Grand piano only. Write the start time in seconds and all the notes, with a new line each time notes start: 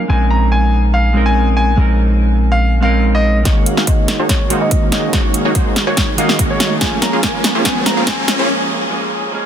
0.10 G#5
0.30 A#5
0.52 G#5
0.94 F5
1.26 G#5
1.57 G#5
2.52 F5
2.83 F5
3.15 D#5
3.66 F5
3.87 D#5
4.29 C#5
4.61 D#5
4.92 D#5
5.87 C#5
6.18 F5
6.50 C#5
6.81 G#5
7.02 A#5
7.23 G#5
7.65 G#5
7.86 A#5
8.07 G#5